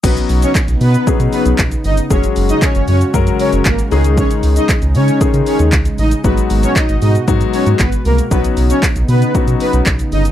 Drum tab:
CC |x---------------|----------------|----------------|----------------|
HH |-xox-xox-xox-xox|-xox-xox-xox-xox|-xox-xox-xox-xox|-xox-xox-xox-xox|
SH |xxxxxxxxxxxxxxxx|xxxxxxxxxxxxxxxx|xxxxxxxxxxxxxxxx|xxxxxxxxxxxxxxxx|
CP |----x-------x---|----x-------x---|----x-------x---|----x-------x---|
BD |o---o---o---o---|o---o---o---o---|o---o---o---o---|o---o---o---o---|

CC |----------------|
HH |-xox-xox-xox-xox|
SH |xxxxxxxxxxxxxxxx|
CP |----x-------x---|
BD |o---o---o---o---|